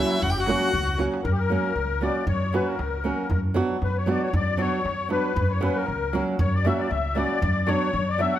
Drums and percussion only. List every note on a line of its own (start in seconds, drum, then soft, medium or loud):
0.10 darbuka tek soft
0.23 darbuka dum medium
0.36 darbuka tek soft
0.46 darbuka tek medium
0.73 darbuka dum medium
0.87 darbuka dum medium
0.99 darbuka tek medium
1.14 darbuka tek medium
1.24 darbuka dum medium
1.40 darbuka tek soft
1.77 darbuka tek medium
2.02 darbuka tek medium
2.16 darbuka tek soft
2.27 darbuka dum medium
2.43 darbuka tek soft
2.54 darbuka tek medium
2.68 darbuka tek soft
2.79 darbuka tek medium
3.20 darbuka tek soft
3.30 darbuka dum loud
3.45 darbuka tek soft
3.56 darbuka tek medium
3.70 darbuka tek soft
3.82 darbuka tek medium
4.07 darbuka tek medium
4.22 darbuka tek soft
4.34 darbuka dum medium
4.48 darbuka tek soft
4.59 darbuka tek medium
4.73 darbuka tek soft
4.86 darbuka tek medium
4.99 darbuka tek soft
5.10 darbuka tek medium
5.25 darbuka tek soft
5.36 darbuka dum medium
5.50 darbuka tek soft
5.61 darbuka tek medium
5.86 darbuka tek medium
6.13 darbuka tek medium
6.27 darbuka tek soft
6.39 darbuka dum medium
6.53 darbuka tek soft
6.65 darbuka tek medium
6.80 darbuka tek soft
6.91 darbuka tek medium
7.16 darbuka tek medium
7.30 darbuka tek soft
7.41 darbuka dum medium
7.67 darbuka tek medium
7.93 darbuka tek medium
8.19 darbuka tek medium
8.34 darbuka tek soft